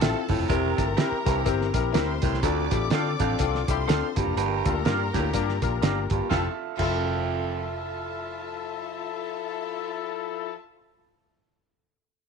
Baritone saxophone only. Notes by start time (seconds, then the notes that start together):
0.29 A2
0.49 C3
1.26 G2
2.23 A2
2.43 D2
3.20 F2
4.17 G2
4.37 G2
5.14 A2
6.11 G2
6.30 F2
6.79 F2